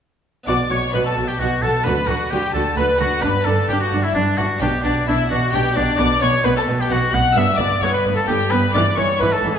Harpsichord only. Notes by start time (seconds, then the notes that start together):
0.44 B2 B3 D4
0.71 B2
0.94 B2
1.17 B2
1.40 B2
1.63 B2
1.83 D3 B3 D4
2.09 D3
2.31 D3
2.54 D3
2.76 D3
2.99 D3
3.19 G2 B3 D4
3.46 G2
3.69 G2
3.92 G2
4.15 G2
4.38 G2
4.58 B2 B3 D4
4.85 B2
5.08 B2
5.30 B2
5.53 B2
5.77 B2
5.96 B2 B3 D4
6.21 B2
6.45 B2
6.68 B2
6.91 B2
7.13 B2
7.34 G2 B3 D4
7.59 G2
7.83 G2
8.05 G2
8.29 G2
8.52 G2
8.72 G2 B3 E4
8.97 G2
9.17 B3 D4 E4
9.21 G#2
9.44 G#2